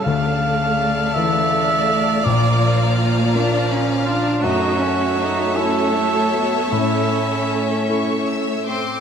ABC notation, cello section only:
X:1
M:6/8
L:1/16
Q:3/8=54
K:Dm
V:1 name="Cello section"
A,12 | B,6 D2 ^C2 D2 | _E2 ^C2 E2 C2 A,2 =B,2 | ^C8- C z3 |]